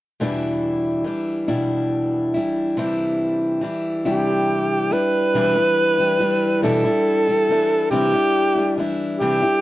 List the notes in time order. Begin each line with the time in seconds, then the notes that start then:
0.20 E2 B2 E3 G3 D4 E4
1.04 E3 G3 D4 E4
1.48 E2 B2 E3 G3 D4 E4
2.34 E3 G3 D4 E4
2.77 C3 E3 G3 D4 E4
3.61 E3 G3 D4 E4
4.05 C3 E3 G3 D4 E4 G4
4.91 G3 D4 E4 B4
5.34 E2 B2 E3 G3 D4 E4
5.55 E3 G3 D4 E4
5.98 E3 G3 D4 E4
6.19 E3 G3 D4 E4
6.62 E2 B2 E3 G3 D4 E4 A4
6.84 E3 G3 D4 E4
7.27 E3 G3 D4 E4
7.49 E3 G3 D4 E4
7.91 C3 E3 G3 D4 E4 G4
8.14 G3 D4 E4
8.55 G3 D4 E4
8.78 E3 G3 D4 E4
9.19 C3 E3 G3 D4 E4 G4
9.42 G3 D4 E4